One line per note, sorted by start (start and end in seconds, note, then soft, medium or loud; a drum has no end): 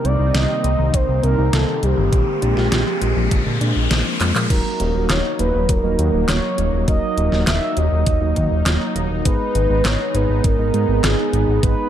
0.00 2.10 C3 medium
0.00 2.09 G3 medium
0.00 4.46 A#3 medium
0.00 4.46 C4 medium
0.00 2.10 D#4 medium
0.00 riser medium
0.05 0.17 C2 loud
0.05 0.17 C4 loud
0.05 0.36 D5 loud
0.05 closed hi-hat medium
0.19 0.32 C2 medium
0.19 0.34 D#4 medium
0.34 0.47 C2 loud
0.34 0.47 A#3 medium
0.34 0.96 D#5 loud
0.34 snare loud
0.34 closed hi-hat medium
0.49 0.57 D#3 medium
0.64 0.76 C2 medium
0.64 0.77 G3 medium
0.64 closed hi-hat medium
0.79 0.91 C2 medium
0.79 0.91 D#3 loud
0.94 1.06 C2 loud
0.94 1.06 C3 loud
0.94 1.23 C5 loud
0.94 kick loud
0.94 closed hi-hat medium
1.09 1.21 C2 medium
1.09 1.21 C3 loud
1.23 1.36 C2 loud
1.23 1.36 C4 loud
1.23 1.55 A#4 loud
1.23 closed hi-hat medium
1.38 1.51 C2 medium
1.38 1.52 D#4 medium
1.53 1.65 C2 loud
1.53 1.65 A#3 medium
1.53 1.85 A4 loud
1.53 snare loud
1.53 closed hi-hat medium
1.68 1.75 D#3 medium
1.83 1.95 C2 medium
1.83 1.95 G3 medium
1.83 4.21 G4 loud
1.83 closed hi-hat medium
1.98 2.10 G1 medium
1.98 2.10 D#3 loud
2.12 2.25 A#1 loud
2.12 2.25 D3 loud
2.12 4.48 G#3 medium
2.12 kick loud
2.12 closed hi-hat medium
2.27 2.40 D3 loud
2.42 2.55 A#1 loud
2.42 2.55 D4 loud
2.42 closed hi-hat medium
2.57 2.69 A#1 medium
2.57 2.71 F4 medium
2.57 snare soft
2.72 2.84 A#1 loud
2.72 2.84 A#3 medium
2.72 snare loud
2.72 closed hi-hat medium
2.87 2.94 F3 medium
3.02 3.14 A#1 medium
3.02 3.14 G#3 medium
3.02 closed hi-hat medium
3.16 3.29 A#1 medium
3.16 3.29 F3 loud
3.31 3.44 A#1 loud
3.31 3.44 D3 loud
3.31 kick loud
3.31 closed hi-hat medium
3.46 3.58 A#2 medium
3.46 3.59 D3 loud
3.61 3.73 A#2 medium
3.61 3.73 D4 loud
3.61 closed hi-hat medium
3.76 3.88 A#1 medium
3.76 3.90 F4 medium
3.91 4.03 A#1 loud
3.91 4.03 A#3 medium
3.91 snare loud
3.91 closed hi-hat medium
4.06 4.13 F3 medium
4.20 4.33 F2 medium
4.20 4.33 G#3 medium
4.20 clap medium
4.20 closed hi-hat medium
4.35 4.48 A#2 medium
4.35 4.48 F3 loud
4.35 clap loud
4.50 4.62 D#1 loud
4.50 4.91 F#3 loud
4.50 9.22 F#3 medium
4.50 4.91 A#3 medium
4.50 9.22 A#3 medium
4.50 4.91 D#4 medium
4.50 11.89 D#4 loud
4.50 4.91 F#4 medium
4.50 4.91 A#4 loud
4.50 5.11 A#4 loud
4.50 kick loud
4.50 closed hi-hat loud
4.50 crash loud
4.80 4.92 D#1 loud
4.80 closed hi-hat medium
4.95 5.07 D#1 medium
4.95 5.07 F#3 medium
4.95 5.07 A#3 medium
4.95 5.07 D#4 medium
4.95 5.07 F#4 medium
4.95 5.08 A#4 loud
5.10 5.22 D#1 loud
5.10 5.39 C#5 loud
5.10 snare loud
5.10 clap loud
5.10 closed hi-hat loud
5.39 5.52 D#1 medium
5.39 5.80 F#3 medium
5.39 5.80 A#3 medium
5.39 5.80 D#4 medium
5.39 5.80 F#4 medium
5.39 5.71 B4 medium
5.39 5.80 C#5 medium
5.39 closed hi-hat medium
5.54 5.66 D#1 medium
5.69 5.81 D#1 loud
5.69 6.28 A#4 medium
5.69 kick loud
5.69 closed hi-hat loud
5.84 5.96 D#1 medium
5.84 6.25 F#3 loud
5.84 6.25 A#3 medium
5.84 6.25 D#4 medium
5.84 6.25 F#4 medium
5.84 6.25 D#5 loud
5.99 6.11 D#2 loud
5.99 closed hi-hat medium
6.13 6.26 D#1 medium
6.28 6.41 D#1 loud
6.28 6.84 F#3 medium
6.28 6.84 A#3 medium
6.28 6.84 D#4 medium
6.28 6.84 F#4 medium
6.28 6.84 C#5 medium
6.28 6.84 C#5 loud
6.28 snare loud
6.28 clap loud
6.28 closed hi-hat loud
6.58 6.70 D#1 medium
6.58 closed hi-hat medium
6.73 6.85 D#1 medium
6.88 7.00 D#1 loud
6.88 7.29 F#3 loud
6.88 7.29 A#3 medium
6.88 7.29 D#4 medium
6.88 7.29 F#4 medium
6.88 7.29 A#4 loud
6.88 7.44 D#5 loud
6.88 kick loud
6.88 closed hi-hat loud
7.17 7.30 D#1 loud
7.17 closed hi-hat medium
7.32 7.44 D#1 medium
7.32 7.45 F#3 medium
7.32 7.45 A#3 medium
7.32 7.45 D#4 medium
7.32 7.45 F#4 medium
7.32 7.45 A#4 loud
7.32 snare soft
7.47 7.59 D#1 loud
7.47 7.79 E5 loud
7.47 snare loud
7.47 clap loud
7.47 closed hi-hat loud
7.77 7.89 D#1 loud
7.77 8.18 F#3 medium
7.77 8.18 A#3 medium
7.77 8.18 D#4 medium
7.77 8.18 F#4 medium
7.77 8.18 C#5 medium
7.77 8.96 D#5 loud
7.77 closed hi-hat medium
7.92 8.04 D#1 medium
8.06 8.19 D#1 loud
8.06 kick loud
8.06 closed hi-hat loud
8.21 8.34 D#1 medium
8.21 8.63 F#3 loud
8.21 8.63 A#3 medium
8.21 8.63 D#4 medium
8.21 8.63 F#4 medium
8.21 8.62 D#5 loud
8.36 8.49 D#2 loud
8.36 kick medium
8.36 closed hi-hat medium
8.51 8.63 D#1 medium
8.66 8.78 D#1 loud
8.66 9.22 F#3 medium
8.66 9.22 A#3 medium
8.66 9.22 D#4 medium
8.66 9.22 F#4 medium
8.66 9.22 C#5 medium
8.66 snare loud
8.66 clap loud
8.66 closed hi-hat loud
8.96 9.08 D#1 loud
8.96 closed hi-hat medium
9.11 9.23 D#1 medium
9.25 9.38 G#1 loud
9.25 9.66 G#3 loud
9.25 11.89 G#3 medium
9.25 9.67 B3 medium
9.25 11.89 B3 medium
9.25 9.67 D#4 medium
9.25 9.67 G#4 medium
9.25 9.86 B4 loud
9.25 9.67 B4 loud
9.25 kick loud
9.25 closed hi-hat loud
9.55 9.67 G#1 loud
9.55 closed hi-hat medium
9.70 9.82 G#1 medium
9.70 9.83 G#3 medium
9.70 9.83 B3 medium
9.70 9.83 D#4 medium
9.70 9.83 G#4 medium
9.70 9.83 B4 loud
9.85 9.97 G#1 loud
9.85 10.16 C#5 loud
9.85 snare loud
9.85 clap medium
9.85 closed hi-hat loud
10.15 10.27 G#1 loud
10.15 10.56 G#3 medium
10.15 10.56 B3 medium
10.15 10.56 D#4 medium
10.15 10.56 G#4 medium
10.15 10.46 B4 loud
10.15 10.56 C#5 loud
10.15 closed hi-hat medium
10.29 10.42 G#1 medium
10.44 10.56 G#1 loud
10.44 11.05 A#4 loud
10.44 kick loud
10.44 closed hi-hat medium
10.59 10.71 G#1 medium
10.59 11.00 G#3 loud
10.59 11.00 B3 medium
10.59 11.00 D#4 medium
10.59 11.00 G#4 medium
10.59 11.00 D#5 loud
10.74 10.86 G#2 medium
10.74 closed hi-hat medium
10.89 11.01 G#1 medium
11.04 11.16 G#1 loud
11.04 11.60 G#3 medium
11.04 11.60 D#4 medium
11.04 11.62 G#4 loud
11.04 11.60 C#5 medium
11.04 snare loud
11.04 clap medium
11.04 closed hi-hat medium
11.33 11.45 G#1 medium
11.33 closed hi-hat medium
11.48 11.60 G#1 medium
11.63 11.75 G#1 loud
11.63 11.89 G#3 loud
11.63 11.89 B3 medium
11.63 11.89 D#4 medium
11.63 11.89 G#4 medium
11.63 11.89 B4 loud
11.63 kick loud
11.63 closed hi-hat loud